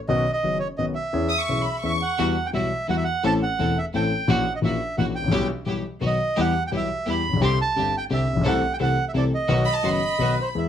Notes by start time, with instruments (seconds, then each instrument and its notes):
0.08 grand piano B1 B2 D#3 B3 C#4 F#4, bandoneon D#5
0.33 bandoneon D#5
0.43 grand piano F#1 F#2 D#3 B3 C#4 F#4
0.60 bandoneon C#5
0.78 grand piano B1 B2 D#3 B3 C#4 F#4, bandoneon D#5
0.95 bandoneon E5
1.13 grand piano E2 E3 B3 C#4 G#4
1.29 violin section D#6
1.38 violin section C#6
1.49 grand piano B1 B2 E3 B3 C#4 G#4
1.63 violin section B5
1.82 grand piano E2 E3 B3 C#4 G#4, bandoneon E5, violin section C#6
2.02 bandoneon F#5
2.18 grand piano E2 E3 G3 B3 F#4, string section G3 E4 F#4
2.46 bandoneon G5
2.53 grand piano B1 B2 E3 G3 B3 F#4, string section G3 E4 F#4, bandoneon E5
2.88 grand piano E2 E3 G3 B3 F#4, string section G3 E4 F#4, bandoneon F#5
2.97 bandoneon E5
3.04 bandoneon F#5
3.23 grand piano A1 A2 E3 A3 C4 A4, string section C4 E4 A4, bandoneon A5
3.42 bandoneon F#5
3.59 grand piano E1 E2 E3 A3 C4 A4, string section C4 E4 A4
3.78 bandoneon E5
3.94 grand piano A1 A2 E3 A3 C4 A4, string section C4 E4 A4, bandoneon G5
4.28 grand piano A#1 A#2 E3 A#3 C#4 F#4, string section A#3 E4 F#4, bandoneon F#5
4.56 bandoneon D#5
4.62 grand piano A#1 A#2 E3 A#3 C#4 F#4, string section A#3 E4 F#4, bandoneon E5
4.98 grand piano A#1 A#2 E3 A#3 C#4 F#4, string section A#3 E4 F#4, bandoneon F#5
5.15 bandoneon G5
5.20 grand piano G#1 A1
5.28 grand piano A#1 B1 B2 E3
5.32 grand piano G3 B3 G4, string section B3 E4 G4
5.66 grand piano B1 B2 E3 G3 B3 G4, string section B3 E4 G4
6.01 grand piano B1 B2 D#3 F#3 B3 F#4, string section B3 D#4 F#4
6.06 bandoneon D#5
6.37 grand piano E2 E3 G3 B3 G4, string section B3 E4 G4
6.41 bandoneon F#5
6.67 bandoneon G5
6.71 grand piano B1 B2 E3 G3 B3 G4, string section B3 E4 G4
6.76 bandoneon E5
7.06 grand piano E2 E3 G3 B3 G4, string section B3 E4 G4, bandoneon B5
7.29 grand piano A1
7.33 grand piano A#1
7.37 grand piano B1
7.41 grand piano C2 C3 D3 G3 C4 G4, string section C4 D4 G4, bandoneon C6
7.61 bandoneon A5
7.76 grand piano G1 G2 D3 G3 C4 G4, string section C4 D4 G4
7.97 bandoneon G5
8.10 grand piano C2 C3 D3 G3 C4 G4, string section C4 D4 G4, bandoneon E5
8.33 grand piano A1 A#1
8.41 grand piano B1, string section C4 E4
8.45 grand piano C2 C3 E3 A3 C4 A4, string section A4, bandoneon F#5
8.73 bandoneon G5
8.80 grand piano C2 C3 E3 A3 C4 A4, string section C4 E4 A4, bandoneon F#5
9.09 bandoneon E5
9.14 grand piano C2 C3 E3 A3 C4 A4, string section C4 E4 A4, bandoneon D5
9.34 bandoneon D#5
9.48 grand piano B1 B2 D#3 F#3 B3 F#4, string section B3 D#4 F#4
9.65 violin section B5
9.74 violin section A5
9.83 grand piano F#1 F#2 D#3 F#3 B3 F#4, string section B3 D#4 F#4, violin section C6
9.92 violin section B5
10.19 grand piano B1 B2 D#3 F#3 B3 F#4, string section B3 D#4 F#4, bandoneon B4
10.41 bandoneon C5
10.55 grand piano E2 E3 G#3 B3 G#4, bandoneon E5